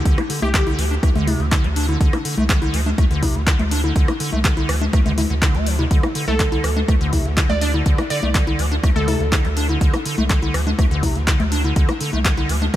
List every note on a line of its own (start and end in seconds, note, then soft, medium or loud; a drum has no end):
0.05 0.15 D2 loud
0.05 0.19 D3 loud
0.05 kick loud
0.05 closed hi-hat loud
0.18 0.22 D4 medium
0.18 cross-stick medium
0.18 closed hi-hat soft
0.18 high conga medium
0.30 0.40 D3 medium
0.30 open hi-hat loud
0.42 0.75 C2 medium
0.42 0.49 A3 medium
0.42 0.50 G4 medium
0.42 high conga soft
0.42 low conga loud
0.54 0.65 D3 medium
0.54 0.62 G4 medium
0.54 kick loud
0.54 clap loud
0.54 closed hi-hat loud
0.67 0.80 D3 medium
0.67 closed hi-hat soft
0.67 high conga medium
0.78 0.98 D2 medium
0.78 0.85 F3 medium
0.78 open hi-hat loud
0.91 0.95 D4 medium
1.03 1.36 D2 medium
1.03 1.10 A3 loud
1.03 kick loud
1.03 cross-stick medium
1.03 closed hi-hat loud
1.03 high conga soft
1.15 1.29 D3 loud
1.15 closed hi-hat soft
1.15 low conga loud
1.27 1.41 C3 loud
1.27 open hi-hat loud
1.27 high conga medium
1.27 low conga loud
1.40 1.59 D2 medium
1.40 1.46 D3 medium
1.40 closed hi-hat soft
1.52 1.66 D3 medium
1.52 kick loud
1.52 clap loud
1.52 closed hi-hat medium
1.52 high conga soft
1.64 1.97 D2 loud
1.64 1.68 A3 medium
1.64 closed hi-hat soft
1.76 1.86 D4 medium
1.76 open hi-hat loud
1.89 1.98 D3 medium
1.89 closed hi-hat soft
1.89 high conga medium
2.01 2.10 D2 medium
2.01 2.14 D3 loud
2.01 kick loud
2.01 closed hi-hat medium
2.13 2.17 D4 medium
2.13 cross-stick medium
2.13 closed hi-hat soft
2.13 high conga medium
2.25 2.35 D3 medium
2.25 open hi-hat loud
2.37 2.70 C2 medium
2.37 2.44 A3 medium
2.37 high conga soft
2.37 low conga loud
2.49 2.60 D3 medium
2.49 kick loud
2.49 clap loud
2.49 closed hi-hat medium
2.62 2.75 D3 medium
2.62 closed hi-hat soft
2.62 high conga medium
2.74 2.93 D2 medium
2.74 2.81 F3 medium
2.74 open hi-hat loud
2.86 2.90 D4 medium
2.86 low conga medium
2.98 3.31 D2 medium
2.98 3.05 A3 loud
2.98 kick loud
2.98 cross-stick medium
2.98 closed hi-hat medium
2.98 high conga soft
3.11 3.24 D3 loud
3.11 closed hi-hat soft
3.23 3.37 C3 loud
3.23 kick medium
3.23 open hi-hat loud
3.23 high conga medium
3.35 3.54 D2 medium
3.35 3.42 D3 medium
3.35 closed hi-hat soft
3.47 3.61 D3 medium
3.47 kick loud
3.47 clap loud
3.47 closed hi-hat medium
3.47 high conga soft
3.59 3.92 D2 medium
3.59 3.63 A3 medium
3.59 closed hi-hat soft
3.59 low conga medium
3.71 3.82 D4 medium
3.71 open hi-hat loud
3.84 3.94 D3 medium
3.84 high conga medium
3.96 4.06 D2 medium
3.96 4.10 D3 loud
3.96 kick loud
3.96 closed hi-hat medium
4.08 4.12 D4 medium
4.08 cross-stick medium
4.08 closed hi-hat soft
4.08 high conga medium
4.20 4.30 D3 medium
4.20 open hi-hat loud
4.33 4.65 C2 medium
4.33 4.39 A3 medium
4.33 high conga soft
4.33 low conga loud
4.44 4.55 D3 medium
4.44 kick loud
4.44 clap loud
4.44 closed hi-hat medium
4.57 4.70 D3 medium
4.57 closed hi-hat soft
4.57 high conga medium
4.69 4.88 D2 medium
4.69 4.76 F3 medium
4.69 cross-stick medium
4.69 open hi-hat loud
4.81 4.85 D4 medium
4.81 low conga medium
4.93 5.26 D2 medium
4.93 5.00 A3 loud
4.93 kick loud
4.93 cross-stick medium
4.93 closed hi-hat medium
4.93 high conga soft
5.06 5.12 D3 loud
5.06 closed hi-hat soft
5.06 low conga loud
5.18 5.22 D3 medium
5.18 open hi-hat loud
5.18 high conga medium
5.18 low conga loud
5.30 5.49 D2 medium
5.30 5.34 D3 medium
5.42 5.56 D3 loud
5.42 kick loud
5.42 clap loud
5.42 closed hi-hat medium
5.42 high conga soft
5.55 5.87 D2 medium
5.55 5.68 A3 medium
5.55 closed hi-hat soft
5.67 5.77 F3 medium
5.67 open hi-hat loud
5.79 5.85 C3 medium
5.79 high conga medium
5.91 6.01 D2 loud
5.91 6.05 D3 loud
5.91 kick loud
5.91 closed hi-hat medium
6.03 6.07 D4 medium
6.03 cross-stick medium
6.03 closed hi-hat soft
6.03 high conga medium
6.15 6.26 D3 medium
6.15 open hi-hat loud
6.28 6.60 C2 medium
6.28 6.34 A3 medium
6.28 6.40 A4 medium
6.28 high conga soft
6.28 low conga medium
6.40 6.50 D3 medium
6.40 kick loud
6.40 clap loud
6.40 closed hi-hat medium
6.52 6.65 D3 medium
6.52 closed hi-hat soft
6.52 high conga medium
6.64 6.83 D2 medium
6.64 6.71 F3 medium
6.64 cross-stick medium
6.64 open hi-hat loud
6.77 6.80 D4 medium
6.77 low conga medium
6.88 7.21 D2 medium
6.88 6.95 A3 loud
6.88 kick loud
6.88 cross-stick medium
6.88 closed hi-hat medium
6.88 high conga soft
7.01 7.14 D3 loud
7.01 closed hi-hat soft
7.13 7.27 C3 loud
7.13 kick medium
7.13 open hi-hat loud
7.13 high conga medium
7.25 7.44 D2 medium
7.25 7.32 D3 medium
7.25 closed hi-hat soft
7.37 7.51 D3 medium
7.37 kick loud
7.37 clap loud
7.37 closed hi-hat medium
7.37 high conga soft
7.50 7.82 D2 medium
7.50 7.54 A3 medium
7.50 7.57 D5 medium
7.50 closed hi-hat soft
7.50 low conga medium
7.61 7.72 D4 medium
7.61 7.70 D5 medium
7.61 open hi-hat loud
7.74 7.84 D3 medium
7.74 high conga medium
7.86 7.96 D2 loud
7.86 8.00 D3 loud
7.86 kick loud
7.86 closed hi-hat medium
7.98 8.02 D4 medium
7.98 cross-stick medium
7.98 closed hi-hat soft
7.98 high conga medium
8.10 8.21 D3 medium
8.10 8.23 D5 loud
8.10 open hi-hat loud
8.23 8.55 C2 medium
8.23 8.29 A3 medium
8.23 high conga soft
8.23 low conga medium
8.35 8.45 D3 medium
8.35 kick loud
8.35 clap loud
8.35 closed hi-hat medium
8.47 8.61 D3 medium
8.47 closed hi-hat soft
8.47 high conga medium
8.59 8.78 D2 medium
8.59 8.66 F3 medium
8.59 open hi-hat loud
8.72 8.76 D4 medium
8.72 closed hi-hat soft
8.84 9.16 D2 medium
8.84 8.90 A3 loud
8.84 kick loud
8.84 cross-stick medium
8.84 closed hi-hat medium
8.84 high conga soft
8.96 9.10 D3 loud
8.96 9.04 A4 medium
8.96 closed hi-hat soft
8.96 low conga medium
9.08 9.22 C3 loud
9.08 9.16 A4 medium
9.08 open hi-hat loud
9.08 high conga medium
9.08 low conga medium
9.20 9.39 D2 medium
9.20 9.27 D3 medium
9.20 closed hi-hat soft
9.32 9.46 D3 medium
9.32 kick loud
9.32 clap loud
9.32 closed hi-hat medium
9.32 high conga soft
9.45 9.77 D2 medium
9.45 9.49 A3 medium
9.45 closed hi-hat soft
9.57 9.67 D4 medium
9.57 open hi-hat loud
9.69 9.79 D3 medium
9.69 closed hi-hat soft
9.69 high conga medium
9.81 9.91 D2 loud
9.81 9.95 D3 loud
9.81 kick loud
9.81 closed hi-hat medium
9.94 9.98 D4 medium
9.94 cross-stick medium
9.94 closed hi-hat soft
9.94 high conga medium
10.05 10.16 D3 medium
10.05 open hi-hat loud
10.18 10.50 C2 medium
10.18 10.25 A3 medium
10.18 closed hi-hat soft
10.18 high conga soft
10.18 low conga medium
10.30 10.40 D3 medium
10.30 kick loud
10.30 clap loud
10.30 closed hi-hat loud
10.42 10.56 D3 medium
10.42 closed hi-hat soft
10.42 high conga medium
10.54 10.74 D2 medium
10.54 10.61 F3 medium
10.54 cross-stick medium
10.54 open hi-hat loud
10.67 10.71 D4 medium
10.67 closed hi-hat soft
10.67 low conga medium
10.79 11.11 D2 medium
10.79 10.86 A3 loud
10.79 kick loud
10.79 cross-stick medium
10.79 closed hi-hat medium
10.79 high conga soft
10.91 11.05 D3 loud
10.91 closed hi-hat soft
11.03 11.17 C3 loud
11.03 kick medium
11.03 open hi-hat loud
11.03 high conga medium
11.15 11.35 D2 medium
11.15 11.22 D3 medium
11.15 closed hi-hat soft
11.27 11.41 D3 medium
11.27 kick loud
11.27 clap loud
11.27 closed hi-hat loud
11.27 high conga soft
11.40 11.72 D2 loud
11.40 11.44 A3 medium
11.40 closed hi-hat soft
11.40 low conga medium
11.52 11.62 D4 medium
11.52 open hi-hat loud
11.64 11.74 D3 medium
11.64 closed hi-hat soft
11.64 high conga medium
11.76 11.86 D2 loud
11.76 11.90 D3 loud
11.76 kick loud
11.76 closed hi-hat loud
11.89 11.93 D4 medium
11.89 cross-stick medium
11.89 closed hi-hat soft
11.89 high conga medium
12.01 12.11 D3 medium
12.01 open hi-hat loud
12.13 12.45 C2 medium
12.13 12.20 A3 medium
12.13 high conga soft
12.13 low conga medium
12.25 12.35 D3 medium
12.25 kick loud
12.25 clap loud
12.25 closed hi-hat medium
12.37 12.51 D3 medium
12.37 closed hi-hat soft
12.37 high conga medium
12.49 12.69 D2 medium
12.49 12.56 F3 medium
12.49 open hi-hat loud
12.62 12.66 D4 medium
12.62 closed hi-hat soft
12.62 low conga medium